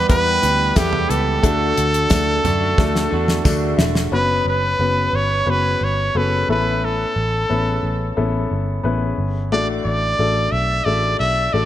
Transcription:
0.00 0.41 E3 medium
0.00 1.47 E3 medium
0.00 0.42 G3 soft
0.00 0.09 B3 medium
0.00 0.43 B3 medium
0.00 0.09 E4 medium
0.00 0.09 G4 medium
0.00 0.43 G4 medium
0.00 0.09 B4 loud
0.09 0.37 E2 medium
0.09 0.68 B3 medium
0.09 0.68 E4 medium
0.09 0.68 G4 medium
0.09 0.68 B4 medium
0.09 0.79 B4 loud
0.09 kick loud
0.09 closed hi-hat medium
0.42 0.71 D2 medium
0.42 0.75 E3 medium
0.42 0.76 G3 medium
0.42 0.77 B3 medium
0.42 0.78 G4 medium
0.42 closed hi-hat medium
0.76 1.04 E2 loud
0.76 1.08 E3 medium
0.76 1.09 G3 medium
0.76 1.35 B3 medium
0.76 1.10 B3 medium
0.76 1.35 E4 medium
0.76 1.35 G4 medium
0.76 1.11 G4 medium
0.76 1.35 A4 medium
0.76 kick loud
0.76 snare loud
0.76 closed hi-hat loud
0.76 tambourine medium
0.93 floor tom medium
1.09 1.38 C#2 medium
1.09 1.42 E3 medium
1.09 1.43 G3 medium
1.09 1.44 B3 medium
1.09 1.45 G4 medium
1.09 3.79 A4 medium
1.09 closed hi-hat medium
1.43 1.71 D2 loud
1.43 2.42 D3 medium
1.43 2.41 D3 medium
1.43 2.02 A3 medium
1.43 2.44 A3 loud
1.43 2.02 D4 medium
1.43 2.44 D4 medium
1.43 2.02 F#4 medium
1.43 2.46 F#4 loud
1.43 2.02 A4 loud
1.43 kick loud
1.43 closed hi-hat loud
1.77 2.06 D2 medium
1.77 closed hi-hat medium
1.94 closed hi-hat medium
2.10 2.39 D2 medium
2.10 2.69 A3 medium
2.10 2.69 D4 medium
2.10 2.69 F#4 medium
2.10 2.70 A4 medium
2.10 kick loud
2.10 snare loud
2.10 closed hi-hat medium
2.10 tambourine medium
2.44 2.72 F#2 medium
2.44 2.61 D3 medium
2.44 2.62 A3 medium
2.44 2.61 D4 medium
2.44 2.59 F#4 medium
2.44 closed hi-hat medium
2.44 floor tom medium
2.60 3.10 A3 medium
2.60 3.12 D4 medium
2.60 3.12 F#4 medium
2.78 3.06 D2 medium
2.78 3.37 A3 medium
2.78 3.37 D4 medium
2.78 3.37 F#4 medium
2.78 3.37 A4 medium
2.78 kick loud
2.78 snare medium
2.95 snare medium
3.10 3.40 E2 medium
3.10 3.43 D3 medium
3.10 3.44 A3 medium
3.10 3.45 D4 medium
3.10 3.46 F#4 medium
3.28 snare medium
3.44 3.73 D2 medium
3.44 3.77 D3 medium
3.44 4.04 A3 medium
3.44 3.78 A3 medium
3.44 4.04 D4 medium
3.44 3.79 D4 medium
3.44 4.04 F#4 medium
3.44 3.80 F#4 medium
3.44 4.04 A4 medium
3.44 3.76 A5 medium
3.44 kick loud
3.44 snare medium
3.44 tambourine medium
3.77 4.06 E1 medium
3.77 4.13 D3 medium
3.77 4.13 A3 medium
3.77 4.14 D4 medium
3.77 4.09 E5 medium
3.77 snare loud
3.82 4.14 F#4 medium
3.95 snare medium
4.12 4.40 F#1 medium
4.12 4.71 B3 medium
4.12 4.71 C#4 medium
4.12 4.71 F#4 medium
4.12 4.72 B4 medium
4.12 4.45 B4 medium
4.45 4.74 F#1 medium
4.45 5.17 B4 medium
4.79 5.08 F#1 medium
4.79 5.39 B3 medium
4.79 5.38 C#4 soft
4.79 5.38 F#4 soft
4.79 5.39 B4 medium
5.13 5.41 G1 medium
5.13 5.52 C#5 medium
5.46 5.75 F#1 medium
5.46 6.05 B3 medium
5.46 6.06 C#4 soft
5.46 6.06 F#4 medium
5.46 6.06 B4 medium
5.50 5.86 B4 medium
5.81 6.09 G1 medium
5.81 6.19 C#5 medium
6.15 6.43 F#1 medium
6.15 6.48 B3 medium
6.15 6.48 C#4 medium
6.15 6.49 F#4 medium
6.15 6.48 A4 medium
6.15 6.50 B4 medium
6.49 7.04 A1 medium
6.49 7.46 A2 medium
6.49 7.37 B3 medium
6.49 7.37 C#4 medium
6.49 7.37 E4 medium
6.49 7.37 A4 medium
6.49 6.86 B4 medium
6.85 8.18 A4 medium
7.16 7.44 A1 medium
7.49 7.78 A1 medium
7.49 8.08 B3 medium
7.49 8.08 C#4 soft
7.49 8.08 E4 soft
7.49 8.08 B4 medium
7.83 8.11 A1 medium
8.17 8.45 A1 medium
8.17 8.75 B3 medium
8.17 8.76 C#4 medium
8.17 8.76 E4 medium
8.17 8.76 A4 medium
8.51 8.79 G1 medium
8.83 9.12 A1 medium
8.83 9.42 B3 medium
8.83 9.43 C#4 medium
8.83 9.43 E4 medium
8.83 9.43 B4 medium
9.18 9.52 G1 medium
9.52 9.80 A1 medium
9.52 10.49 A2 medium
9.52 10.11 A3 medium
9.52 10.11 D4 medium
9.52 10.11 F#4 medium
9.52 10.11 A4 medium
9.52 9.67 D5 medium
9.85 10.13 A1 medium
9.85 10.53 D5 medium
10.18 10.47 A1 medium
10.18 10.77 A3 soft
10.18 10.78 D4 soft
10.18 10.78 F#4 soft
10.18 10.78 A4 medium
10.52 10.80 B1 medium
10.52 10.86 E5 medium
10.85 11.14 A1 medium
10.85 11.45 A3 medium
10.85 11.45 D4 medium
10.85 11.45 F#4 medium
10.85 11.45 A4 medium
10.85 11.19 D5 loud
11.19 11.48 B1 medium
11.19 11.55 E5 medium
11.53 11.65 A1 medium
11.53 11.65 A3 medium
11.53 11.65 D4 medium
11.53 11.65 F#4 medium
11.53 11.65 A4 medium
11.53 11.65 D5 medium

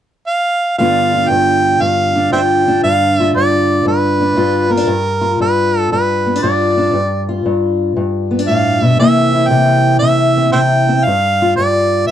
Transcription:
0.27 0.75 F5 medium
0.78 1.30 G2 medium
0.78 4.89 D3 medium
0.78 3.23 B3 medium
0.78 2.15 D4 medium
0.78 1.14 F4 medium
0.78 1.31 F5 medium
1.14 2.32 F4 medium
1.30 1.81 G2 medium
1.30 1.83 G5 loud
1.81 2.32 G2 medium
1.81 2.32 F5 medium
2.16 2.67 D4 medium
2.32 2.84 G2 medium
2.32 2.87 F4 medium
2.32 2.40 C5 medium
2.32 2.40 E5 medium
2.32 2.80 G5 medium
2.68 4.20 D4 medium
2.84 3.35 G2 medium
2.84 3.19 F5 loud
3.19 4.36 F4 medium
3.19 3.31 E5 loud
3.36 3.85 G2 medium
3.36 3.83 D5 medium
3.86 4.36 G2 medium
3.86 4.74 B4 medium
4.21 4.70 D4 medium
4.37 4.87 G2 medium
4.37 4.90 F4 medium
4.70 4.77 B3 medium
4.70 5.41 A#4 medium
4.77 4.87 D4 soft
4.87 5.40 G2 medium
5.21 6.42 F4 medium
5.40 5.92 G2 medium
5.40 5.89 B4 medium
5.92 6.42 G2 medium
5.92 6.40 B4 medium
6.26 6.36 B3 medium
6.36 6.76 D4 soft
6.43 6.92 G2 medium
6.43 6.92 F4 medium
6.43 7.42 D5 medium
6.77 6.92 D4 medium
6.94 7.44 G2 medium
7.29 8.98 F4 medium
7.46 7.95 G2 medium
7.97 8.98 G2 medium
8.31 8.39 B3 medium
8.39 9.00 D4 soft
8.48 8.82 A2 medium
8.48 8.84 F5 medium
8.82 8.99 B2 medium
8.82 8.96 E5 medium
8.99 9.50 C3 medium
8.99 11.04 E3 medium
8.99 11.04 A#3 medium
8.99 10.36 C4 medium
8.99 9.34 E4 medium
8.99 9.49 E5 loud
9.35 10.53 E4 medium
9.48 10.01 C3 medium
9.48 9.99 G5 loud
9.99 10.52 C3 medium
9.99 10.49 E5 medium
10.37 10.88 C4 medium
10.52 11.03 C3 medium
10.52 11.06 E4 medium
10.52 10.61 C5 medium
10.52 10.60 E5 medium
10.52 11.06 G5 medium
10.89 11.04 C4 medium
11.04 11.58 G2 medium
11.04 11.56 F5 loud
11.42 12.11 F4 medium
11.56 12.09 G2 medium
11.56 12.05 D5 medium
12.07 12.11 F5 medium

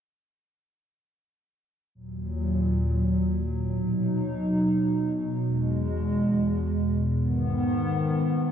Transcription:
1.95 3.68 D#2 medium
1.95 3.68 A#2 medium
1.95 5.42 F#3 medium
3.70 7.17 B2 medium
3.70 5.43 D#4 medium
5.45 7.19 E2 medium
5.45 7.19 G#3 medium
7.20 8.52 G#2 medium
7.20 8.52 D#3 medium
7.20 8.52 B3 medium

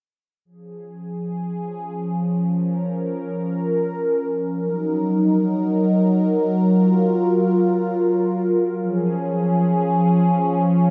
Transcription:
0.45 4.59 F3 medium
0.45 4.59 C#4 medium
0.45 2.52 G#4 medium
2.54 4.60 A#4 medium
4.62 8.76 F#3 medium
4.62 6.69 D#4 medium
4.62 8.76 A#4 medium
6.72 8.78 F4 medium
8.80 10.90 F3 medium
8.80 10.90 C#4 medium
8.80 10.87 G#4 medium

